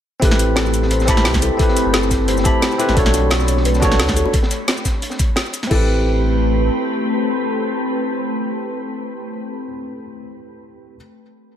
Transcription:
0.20 sub bass A1, ambient pad A3 C4 G4 B5, tine electric piano C4 E4 G4, felt piano A4, kick, closed hi-hat
0.25 tine electric piano B4
0.31 snare
0.39 closed hi-hat, shaker
0.56 felt piano A4, snare, closed hi-hat
0.66 snare, shaker
0.74 closed hi-hat, shaker
0.82 snare
0.91 felt piano C5, closed hi-hat
1.00 snare, shaker
1.05 tine electric piano C4 E4 G4, felt piano A5, kick, snare, closed hi-hat, shaker
1.11 tine electric piano B5
1.17 snare
1.25 sub bass C2, snare, closed hi-hat, open hi-hat
1.34 kick, snare, shaker
1.42 felt piano A4, closed hi-hat, shaker
1.57 tine electric piano C4 E4 G4, felt piano A4, kick, closed hi-hat
1.62 tine electric piano B4
1.69 snare
1.77 closed hi-hat, shaker
1.86 sub bass G1
1.94 felt piano A4, snare, closed hi-hat
2.03 shaker
2.10 kick, snare, closed hi-hat, open hi-hat, shaker
2.28 felt piano C5, closed hi-hat
2.37 snare, shaker
2.44 tine electric piano C4 E4 G4 B5, felt piano A5, kick, closed hi-hat, shaker
2.62 snare, closed hi-hat
2.72 shaker
2.78 tine electric piano C4 E4 G4 B4, felt piano A4, closed hi-hat, shaker
2.89 sub bass A1, snare, closed hi-hat
2.94 sub bass B1, tine electric piano D4 F#4 A4, ambient pad D4 C#5, felt piano A4, kick, closed hi-hat
2.99 tine electric piano C#5
3.06 snare
3.14 closed hi-hat, high bongo, shaker
3.31 felt piano A4, snare, closed hi-hat
3.40 snare, shaker
3.48 closed hi-hat, shaker
3.57 snare
3.65 felt piano B4, closed hi-hat
3.74 snare, shaker
3.80 tine electric piano D4 F#4 A4, felt piano A5, kick, snare, closed hi-hat, high bongo, shaker
3.85 tine electric piano C#5
3.92 snare
3.99 sub bass D2, snare, closed hi-hat, open hi-hat
4.09 kick, snare, shaker
4.16 felt piano A4, closed hi-hat, shaker
4.26 high bongo
4.33 kick, closed hi-hat
4.43 snare
4.51 closed hi-hat, shaker
4.68 snare, closed hi-hat
4.77 shaker
4.85 kick, snare, closed hi-hat, open hi-hat, shaker
5.02 closed hi-hat
5.10 snare, shaker
5.19 kick, closed hi-hat, shaker
5.36 snare, closed hi-hat
5.46 shaker
5.53 closed hi-hat, shaker
5.63 snare, closed hi-hat
5.67 sub bass A1, ambient pad A3 C4 G4 B4, tine electric piano C4 E4, felt piano A4, kick, crash
5.72 tine electric piano G4 B4

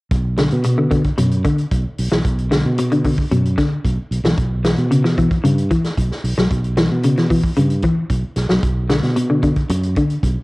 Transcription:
0.11 fingered electric bass B1, kick, closed hi-hat
0.38 clean electric guitar D3, snare, closed hi-hat
0.51 fingered electric bass B2, closed hi-hat
0.64 clean electric guitar B2, closed hi-hat
0.78 clean electric guitar D3
0.91 clean electric guitar D3, kick, closed hi-hat
1.04 muted fingered electric bass stroke, kick, closed hi-hat
1.18 fingered electric bass F#2, clean electric guitar B2, closed hi-hat
1.31 closed hi-hat
1.45 clean electric guitar D3, kick, closed hi-hat
1.58 closed hi-hat
1.71 fingered electric bass B1, kick, closed hi-hat
1.98 fingered electric bass B1, open hi-hat
2.12 fingered electric bass B1, clean electric guitar E3, snare, closed hi-hat
2.25 fingered electric bass B1, kick, closed hi-hat
2.38 closed hi-hat
2.51 clean electric guitar D3, snare, closed hi-hat
2.65 fingered electric bass B2
2.78 clean electric guitar B2, closed hi-hat
2.92 clean electric guitar D3, closed hi-hat
3.04 clean electric guitar D3, kick, open hi-hat
3.18 muted fingered electric bass stroke, kick
3.31 fingered electric bass F#2, clean electric guitar B2, closed hi-hat
3.46 closed hi-hat
3.58 clean electric guitar D3, kick, snare, closed hi-hat
3.85 fingered electric bass B1, kick, closed hi-hat
4.11 fingered electric bass B1, closed hi-hat
4.24 fingered electric bass B1, clean electric guitar E3, snare, closed hi-hat
4.38 fingered electric bass B1, kick, closed hi-hat
4.64 clean electric guitar E3, snare, closed hi-hat
4.78 fingered electric bass B2, closed hi-hat
4.91 clean electric guitar C#3, closed hi-hat
5.04 clean electric guitar E3, snare
5.18 clean electric guitar E3, kick, closed hi-hat
5.31 kick, closed hi-hat
5.44 fingered electric bass G2, clean electric guitar C#3, closed hi-hat
5.58 closed hi-hat
5.71 clean electric guitar E3, kick, closed hi-hat
5.84 snare, closed hi-hat
5.97 fingered electric bass B1, kick, closed hi-hat
6.11 snare
6.24 fingered electric bass B1, open hi-hat
6.38 fingered electric bass B1, clean electric guitar F#3, snare
6.51 fingered electric bass B1, kick, closed hi-hat
6.64 closed hi-hat
6.77 clean electric guitar E3, snare, closed hi-hat
6.91 fingered electric bass B2
7.03 clean electric guitar C#3, closed hi-hat
7.17 clean electric guitar E3, snare, closed hi-hat
7.30 clean electric guitar E3, kick, open hi-hat
7.44 kick
7.57 fingered electric bass G2, clean electric guitar C#3, closed hi-hat
7.70 closed hi-hat
7.82 clean electric guitar E3, kick, closed hi-hat
8.10 fingered electric bass B1, kick, closed hi-hat
8.36 fingered electric bass B1, snare, closed hi-hat
8.49 fingered electric bass B1, clean electric guitar F#3, snare, closed hi-hat
8.63 fingered electric bass B1, kick, closed hi-hat
8.89 clean electric guitar D3, snare, closed hi-hat
9.03 fingered electric bass B2, snare, closed hi-hat
9.16 clean electric guitar B2, closed hi-hat
9.30 clean electric guitar D3
9.43 clean electric guitar D3, kick, closed hi-hat
9.56 muted fingered electric bass stroke, kick, closed hi-hat
9.69 fingered electric bass F#2, muted clean electric guitar stroke, closed hi-hat
9.83 closed hi-hat
9.96 clean electric guitar D3, kick, closed hi-hat
10.10 closed hi-hat
10.23 fingered electric bass B1, kick, closed hi-hat

